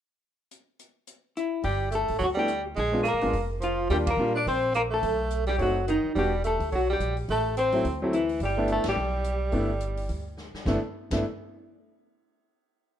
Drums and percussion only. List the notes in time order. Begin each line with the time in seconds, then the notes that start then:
0.51 closed hi-hat
0.79 closed hi-hat
1.07 closed hi-hat
1.37 closed hi-hat
1.63 kick, open hi-hat
1.92 closed hi-hat
2.08 open hi-hat
2.21 kick, open hi-hat
2.48 closed hi-hat
2.76 kick, open hi-hat
3.05 closed hi-hat
3.21 open hi-hat
3.33 kick, open hi-hat
3.62 closed hi-hat
3.90 kick, open hi-hat
4.07 kick, ride
4.47 kick, open hi-hat
4.74 closed hi-hat
5.03 kick, open hi-hat
5.31 closed hi-hat
5.47 open hi-hat
5.59 kick, open hi-hat
5.88 closed hi-hat
6.16 kick, open hi-hat
6.44 closed hi-hat
6.60 open hi-hat
6.72 kick, open hi-hat
7.00 closed hi-hat
7.17 open hi-hat
7.28 kick, open hi-hat
7.57 closed hi-hat
7.72 open hi-hat
7.85 kick, open hi-hat
8.13 closed hi-hat
8.29 open hi-hat
8.40 kick, open hi-hat
8.68 closed hi-hat
8.84 snare, ride
9.24 closed hi-hat
9.52 kick, open hi-hat
9.80 closed hi-hat
9.97 open hi-hat
10.09 kick, open hi-hat
10.37 snare
10.54 snare
10.66 kick, snare
11.11 kick, snare, crash